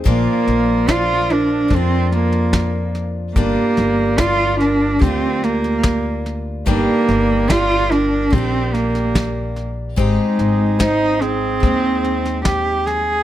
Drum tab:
SD |o-o-o-o-o-ooo-o-|o-o-o-o-o-ooo-o-|o-o-o-o-o-ooo-o-|o-o-o-o-o-ooo-o-|
BD |o---o---o---o---|o---o---o---o---|o---o---o---o---|o---o---o---o---|